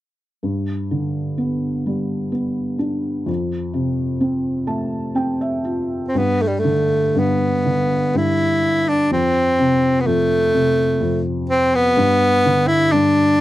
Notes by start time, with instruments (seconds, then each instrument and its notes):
0.43 felt piano G2
0.91 felt piano D3
1.38 felt piano B3
1.86 felt piano G3
2.32 felt piano B3
2.79 felt piano D4
3.26 felt piano F2
3.74 felt piano C3
4.21 felt piano C4
4.67 felt piano A3 A5
5.15 felt piano C4 G5
5.41 felt piano E5
5.65 felt piano F4
6.08 tenor saxophone C4
6.15 felt piano G2, tenor saxophone B3
6.42 tenor saxophone A3
6.47 tenor saxophone G3
6.59 tenor saxophone A3
6.64 felt piano D3
7.15 felt piano G2, tenor saxophone B3
7.65 felt piano D3
8.14 felt piano G2, tenor saxophone E4
8.88 tenor saxophone D4
9.11 felt piano F2, tenor saxophone C4
9.59 felt piano C3
10.00 tenor saxophone B3
10.06 felt piano F2, tenor saxophone A3
10.53 felt piano C3
11.01 felt piano F2
11.49 tenor saxophone C4
11.75 tenor saxophone B3
11.97 felt piano G2
12.45 felt piano D3
12.67 tenor saxophone E4
12.92 felt piano G2, tenor saxophone D4